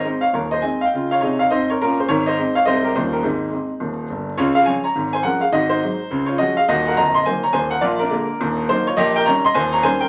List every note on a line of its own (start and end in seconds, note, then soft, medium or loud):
0.00 0.20 G#3 soft
0.00 0.22 C5 medium
0.00 0.23 D#5 medium
0.04 0.21 C4 soft
0.04 0.21 D#4 medium
0.21 0.32 C#5 medium
0.21 0.33 F5 medium
0.33 0.58 D#1 medium
0.33 0.59 D#2 medium
0.33 0.51 A#4 medium
0.33 0.52 C#5 medium
0.51 0.63 C5 medium
0.51 0.62 D#5 medium
0.62 0.79 G#3 soft
0.62 0.79 C4 soft
0.62 0.79 D#4 soft
0.62 0.80 D#5 medium
0.62 0.81 G#5 medium
0.81 0.87 F5 medium
0.85 1.08 D#5 soft
0.85 1.09 G5 medium
0.93 1.16 C#3 medium
0.93 1.17 F4 medium
1.11 1.19 C#5 medium
1.11 1.22 F5 medium
1.21 1.44 C3 medium
1.21 1.45 D#4 medium
1.21 1.38 G#4 medium
1.21 1.39 C#5 medium
1.39 1.50 C#5 medium
1.39 1.50 F5 medium
1.51 1.74 G#2 medium
1.51 1.75 C4 medium
1.51 1.67 C5 medium
1.51 1.68 D#5 medium
1.70 1.80 A#4 medium
1.70 1.80 C#5 medium
1.81 2.04 A#2 medium
1.81 2.05 C#4 medium
1.81 1.98 F4 medium
1.81 1.98 A#4 loud
2.00 2.09 G#4 medium
2.00 2.09 C5 medium
2.09 2.33 G#1 medium
2.09 2.33 G#2 medium
2.09 2.25 A#4 medium
2.09 2.26 C#5 loud
2.26 2.54 C5 medium
2.26 2.55 D#5 medium
2.38 2.54 G#3 soft
2.38 2.54 C4 medium
2.38 2.54 D#4 medium
2.55 2.65 C#5 medium
2.55 2.66 F5 medium
2.65 2.91 C2 medium
2.65 2.90 C3 medium
2.65 2.81 G#3 soft
2.65 2.82 C4 soft
2.65 2.82 D#4 soft
2.65 2.83 C5 medium
2.65 2.83 D#5 loud
2.84 2.94 G4 medium
2.84 2.94 A#4 medium
2.96 3.20 D#1 medium
2.96 3.20 D#2 medium
2.96 3.11 G3 soft
2.96 3.12 C#4 soft
2.96 3.12 F4 soft
2.96 3.12 G4 medium
2.96 3.13 C5 medium
3.12 3.23 G4 medium
3.12 3.23 A#4 medium
3.23 3.48 G#1 medium
3.23 3.47 G#2 medium
3.23 3.52 D#4 medium
3.23 4.09 G#4 medium
3.51 3.67 G#3 soft
3.51 3.68 C4 soft
3.51 3.69 D#4 soft
3.80 4.05 D#1 medium
3.80 4.05 D#2 medium
4.10 4.33 G1 medium
4.10 4.33 G2 medium
4.38 4.62 C#2 medium
4.38 4.62 C#3 medium
4.38 4.55 F4 medium
4.38 4.56 C#5 loud
4.55 4.66 G#4 medium
4.55 4.66 F5 loud
4.66 4.82 F3 soft
4.66 4.82 G#3 medium
4.66 4.82 C#4 medium
4.66 4.83 C#5 medium
4.66 4.84 G#5 loud
4.84 5.12 C#5 medium
4.84 5.13 A#5 medium
4.95 5.20 G#1 medium
4.95 5.20 G#2 medium
5.13 5.24 C5 medium
5.13 5.24 G#5 loud
5.23 5.40 F3 soft
5.23 5.40 G#3 soft
5.23 5.40 C#4 soft
5.23 5.41 A#4 medium
5.23 5.42 F#5 loud
5.41 5.52 G#4 medium
5.41 5.52 F5 medium
5.52 5.77 G#1 medium
5.52 5.77 G#2 medium
5.52 5.70 F#4 medium
5.52 5.71 D#5 loud
5.69 5.82 D#4 medium
5.69 6.28 C5 medium
5.83 5.98 F#3 medium
5.83 5.99 G#3 medium
5.83 5.99 D#4 medium
6.11 6.35 C#2 medium
6.11 6.35 C#3 medium
6.26 6.38 F4 medium
6.26 6.38 C#5 medium
6.38 6.55 F3 soft
6.38 6.55 G#3 medium
6.38 6.55 C#4 medium
6.38 6.56 F#4 medium
6.38 6.56 D#5 loud
6.57 6.67 G#4 medium
6.57 6.68 F5 medium
6.68 6.91 D#1 medium
6.68 6.91 D#2 medium
6.68 6.86 F#4 medium
6.68 6.86 D#5 loud
6.87 6.97 A#4 medium
6.87 6.97 F#5 medium
6.97 7.20 A#0 medium
6.97 7.20 A#1 medium
6.97 7.13 D#5 medium
6.97 7.14 A#5 loud
7.14 7.25 D#5 medium
7.14 7.25 C6 loud
7.26 7.42 D#3 medium
7.26 7.42 F#3 soft
7.26 7.42 A#3 medium
7.26 7.43 C5 medium
7.26 7.43 G#5 loud
7.43 7.54 C#5 medium
7.43 7.54 A#5 loud
7.53 7.76 D#1 medium
7.53 7.77 D#2 medium
7.53 7.71 C5 medium
7.53 7.71 G#5 loud
7.71 7.82 A#4 medium
7.71 7.82 F#5 loud
7.81 8.07 A#1 medium
7.81 8.06 A#2 medium
7.81 7.99 F4 loud
7.81 8.00 D5 loud
7.99 8.65 D4 medium
7.99 8.68 A#4 medium
8.10 8.26 D3 medium
8.10 8.26 G#3 medium
8.10 8.27 A#3 medium
8.40 8.65 D#1 medium
8.40 8.65 D#2 medium
8.69 8.85 D#3 medium
8.69 8.85 F#3 medium
8.69 8.86 A#3 medium
8.69 8.87 D#4 medium
8.69 8.87 C5 loud
8.87 8.97 F4 medium
8.87 8.98 C#5 loud
8.97 9.22 A#1 medium
8.97 9.22 A#2 loud
8.97 9.15 G4 loud
8.97 9.15 D#5 loud
9.16 9.26 A#4 medium
9.16 9.26 G5 loud
9.26 9.42 D#3 medium
9.26 9.43 G3 medium
9.26 9.43 C#4 medium
9.26 9.43 C#5 loud
9.26 9.44 A#5 loud
9.45 9.55 D#5 medium
9.45 9.55 C6 loud
9.54 9.79 D#1 medium
9.54 9.79 D#2 loud
9.54 9.72 C5 loud
9.54 9.73 G#5 loud
9.72 9.83 C#5 medium
9.72 9.83 A#5 loud
9.83 9.99 D#3 medium
9.83 10.00 G3 medium
9.83 10.00 C#4 medium
9.83 10.01 C5 medium
9.83 10.01 G#5 loud
10.00 10.09 A#4 medium
10.00 10.09 G5 loud